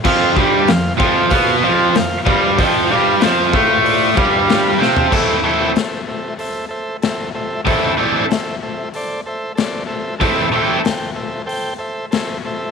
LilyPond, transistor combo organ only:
\new Staff \with { instrumentName = "Transistor combo organ" } { \time 4/4 \key a \minor \tempo 4 = 94 << { r1 | r2 \tuplet 3/2 { r8. d''16 e''8 f''8 g''8 a''8 } | r1 | r1 |
r1 | } \\ { <f' c'' f''>8 <f' c'' d''>8 <f' c'' f''>8 <f' c'' f''>8 <f' c'' f''>8 <f' c'' f''>8 <f' c'' f''>8 <f' c'' f''>8 | <f' c'' g''>8 <f' c'' f''>8 <f' c'' f''>8 <f' c'' f''>8 <f' c'' d''>8 <f' c'' f''>8 <f' c''>8 <f' c'' f''>8 | <a' c'' e''>8 <a' c'' g''>8 <a' c'' e''>8 <a' c'' e''>8 <a' c'' e''>8 <a' c'' e''>8 <a' c'' e''>8 <a' c'' e''>8 | <a' c'' e''>8 <a' c'' d''>8 <a' c'' e''>8 <a' c'' e''>8 <a' c'' d''>8 <a' c'' e''>8 <a' c'' d''>8 <a' c'' e''>8 |
<a' c'' e''>8 <a' c'' g''>8 <a' c'' g''>8 <a' c'' e''>8 <a' c'' g''>8 <a' c'' e''>8 <a' c'' e''>8 <a' c'' e''>8 | } >> }